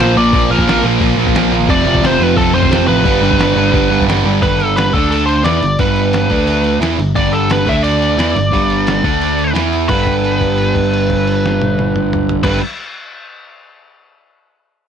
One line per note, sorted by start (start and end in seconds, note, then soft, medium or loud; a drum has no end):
0.00 0.15 A#1 loud
0.00 0.14 A#2 medium
0.00 0.15 A#2 medium
0.00 0.16 F3 medium
0.00 0.17 F3 medium
0.00 0.15 A#3 medium
0.00 0.17 A#3 loud
0.00 0.15 C5 medium
0.00 snare loud
0.16 0.32 A#1 loud
0.16 0.33 A#2 medium
0.16 0.33 F3 loud
0.16 0.32 A#3 loud
0.16 0.52 D5 medium
0.33 0.49 A#1 loud
0.33 0.50 A#2 medium
0.33 0.51 F3 loud
0.33 0.51 A#3 loud
0.33 kick loud
0.33 open hi-hat medium
0.49 0.65 A#1 loud
0.49 0.68 A#2 medium
0.49 0.69 F3 loud
0.49 0.67 A#3 loud
0.49 0.82 A#4 medium
0.59 kick medium
0.67 0.82 A#1 medium
0.67 0.83 A#2 medium
0.67 0.84 F3 medium
0.67 0.84 A#3 loud
0.67 snare loud
0.67 open hi-hat medium
0.84 1.00 A#1 medium
0.84 1.01 A#2 medium
0.84 1.00 F3 medium
0.84 0.99 A#3 medium
1.00 1.16 A#1 loud
1.00 1.15 A#2 medium
1.00 1.16 F3 loud
1.00 1.17 A#3 loud
1.00 kick loud
1.00 open hi-hat medium
1.17 1.33 A#1 loud
1.17 1.35 A#2 medium
1.17 1.34 F3 medium
1.17 1.34 A#3 loud
1.27 kick medium
1.35 1.51 A#1 loud
1.35 1.50 A#2 medium
1.35 1.51 F3 loud
1.35 1.52 A#3 loud
1.35 snare loud
1.35 open hi-hat medium
1.52 1.68 A#1 medium
1.52 1.67 A#2 medium
1.52 1.67 F3 medium
1.52 1.69 A#3 loud
1.67 1.85 F1 loud
1.67 1.84 F2 loud
1.67 1.83 C3 loud
1.67 1.83 F3 loud
1.67 2.05 D5 loud
1.67 kick loud
1.67 open hi-hat medium
1.84 2.02 F1 loud
1.84 2.00 F2 medium
1.84 2.01 C3 medium
1.84 2.02 F3 medium
1.94 kick medium
2.01 2.18 F1 loud
2.01 2.17 F2 loud
2.01 2.17 C3 loud
2.01 2.16 F3 loud
2.01 snare loud
2.01 open hi-hat medium
2.06 2.23 C5 loud
2.17 2.36 F1 medium
2.17 2.35 F2 medium
2.17 2.36 C3 medium
2.17 2.36 F3 loud
2.23 2.37 B4 loud
2.36 2.53 F1 loud
2.36 2.53 F2 loud
2.36 2.52 C3 loud
2.36 2.51 F3 loud
2.36 2.54 A4 medium
2.36 kick loud
2.36 open hi-hat medium
2.52 2.70 F1 loud
2.52 2.69 F2 medium
2.52 2.69 C3 medium
2.52 2.70 F3 medium
2.52 2.87 C5 loud
2.63 kick medium
2.70 2.87 F1 medium
2.70 2.87 F2 medium
2.70 2.87 C3 loud
2.70 2.87 F3 medium
2.70 snare loud
2.70 open hi-hat medium
2.88 3.04 A1 medium
2.88 3.04 F2 medium
2.88 3.04 C3 medium
2.88 3.04 F3 loud
2.88 4.03 B4 medium
3.05 3.20 G1 loud
3.05 3.23 G2 loud
3.05 3.22 D3 loud
3.05 3.22 G3 loud
3.05 kick loud
3.05 open hi-hat medium
3.21 3.37 G1 medium
3.21 3.39 G2 medium
3.21 3.40 D3 medium
3.21 3.41 G3 loud
3.31 kick medium
3.39 3.55 G1 loud
3.39 3.57 G2 medium
3.39 3.57 D3 loud
3.39 3.56 G3 loud
3.39 snare loud
3.39 open hi-hat medium
3.56 3.72 G1 medium
3.56 3.73 G2 medium
3.56 3.74 D3 medium
3.56 3.75 G3 medium
3.74 3.89 G1 medium
3.74 3.91 G2 medium
3.74 3.91 D3 loud
3.74 3.90 G3 loud
3.74 kick loud
3.74 open hi-hat medium
3.90 4.06 G1 loud
3.90 4.07 G2 medium
3.90 4.08 D3 medium
3.90 4.09 G3 medium
4.00 kick medium
4.07 4.23 G1 medium
4.07 4.25 G2 medium
4.07 4.24 D3 loud
4.07 4.23 G3 medium
4.07 snare loud
4.07 open hi-hat medium
4.25 4.40 G1 medium
4.25 4.40 G2 medium
4.25 4.40 D3 medium
4.25 4.41 G3 medium
4.41 4.90 G1 medium
4.41 4.92 G2 medium
4.41 4.91 D3 medium
4.41 4.93 G3 medium
4.41 4.59 B4 medium
4.41 kick loud
4.41 open hi-hat medium
4.59 4.76 A4 medium
4.59 open hi-hat medium
4.76 4.93 B4 medium
4.76 snare loud
4.76 open hi-hat medium
4.92 5.41 D2 medium
4.92 5.43 D3 medium
4.92 5.43 A3 medium
4.92 5.44 D4 loud
4.92 5.10 A4 medium
4.92 kick loud
4.92 open hi-hat medium
5.11 5.26 A4 medium
5.11 open hi-hat medium
5.26 5.44 C5 medium
5.26 open hi-hat medium
5.43 5.60 E2 medium
5.43 5.60 E3 medium
5.43 5.60 B3 loud
5.43 5.61 E4 loud
5.43 5.79 D5 loud
5.43 snare loud
5.43 open hi-hat medium
5.62 5.78 G1 medium
5.62 5.75 G2 medium
5.62 5.75 D3 medium
5.62 open hi-hat medium
5.79 6.26 G1 medium
5.79 6.29 G2 medium
5.79 6.28 D3 loud
5.79 6.30 G3 loud
5.79 6.78 B4 medium
5.79 kick loud
5.79 open hi-hat medium
5.96 open hi-hat medium
6.13 snare loud
6.13 open hi-hat medium
6.29 6.78 D2 medium
6.29 6.80 D3 medium
6.29 6.81 A3 medium
6.29 6.81 D4 loud
6.29 kick loud
6.29 open hi-hat medium
6.47 open hi-hat medium
6.64 open hi-hat soft
6.80 6.96 E2 medium
6.80 6.97 E3 medium
6.80 6.98 B3 medium
6.80 6.98 E4 loud
6.80 snare loud
6.80 open hi-hat medium
6.97 7.14 G1 medium
6.97 7.12 G2 medium
6.97 7.12 D3 medium
6.97 open hi-hat medium
7.15 7.64 G1 medium
7.15 7.66 G2 medium
7.15 7.65 D3 loud
7.15 7.67 G3 medium
7.15 7.33 D5 medium
7.15 kick loud
7.15 open hi-hat medium
7.33 7.50 A4 medium
7.33 open hi-hat medium
7.50 7.68 B4 medium
7.50 snare loud
7.50 open hi-hat medium
7.66 8.15 D2 medium
7.66 8.16 D3 medium
7.66 8.18 A3 medium
7.66 8.18 D4 loud
7.66 7.83 E5 loud
7.66 kick loud
7.66 open hi-hat medium
7.84 9.51 D5 medium
7.84 open hi-hat medium
8.02 open hi-hat medium
8.17 8.34 E2 medium
8.17 8.34 E3 medium
8.17 8.35 B3 medium
8.17 8.35 E4 loud
8.17 snare loud
8.17 open hi-hat medium
8.35 8.51 G1 medium
8.35 8.49 G2 medium
8.35 8.49 D3 medium
8.35 open hi-hat medium
8.51 9.00 G1 medium
8.51 9.02 G2 medium
8.51 9.03 D3 medium
8.51 9.03 G3 medium
8.51 kick loud
8.51 open hi-hat medium
8.70 open hi-hat medium
8.87 snare loud
8.87 open hi-hat medium
9.04 9.52 D2 medium
9.04 9.53 D3 medium
9.04 9.54 A3 medium
9.04 9.54 D4 medium
9.04 kick loud
9.04 open hi-hat medium
9.21 open hi-hat medium
9.39 open hi-hat medium
9.53 9.87 E2 medium
9.53 9.88 E3 medium
9.53 9.89 B3 loud
9.53 9.89 E4 medium
9.53 snare loud
9.53 open hi-hat medium
9.73 open hi-hat medium
9.88 12.35 G1 medium
9.88 12.43 G2 medium
9.88 12.44 D3 medium
9.88 12.47 G3 loud
9.88 12.35 B4 medium
9.88 kick loud
9.88 crash medium
10.07 kick medium
10.07 crash soft
10.24 crash soft
10.41 kick medium
10.41 crash soft
10.58 crash soft
10.76 kick medium
10.76 crash soft
10.93 crash soft
11.10 kick medium
11.10 crash soft
11.27 crash soft
11.46 snare medium
11.62 high tom medium
11.79 high tom medium
11.96 mid tom medium
12.13 mid tom medium
12.29 floor tom medium
12.43 12.58 G1 medium
12.43 12.59 G2 medium
12.43 12.60 D3 medium
12.43 12.61 G3 loud
12.43 12.58 B4 medium
12.43 kick loud
12.43 snare medium
12.43 crash loud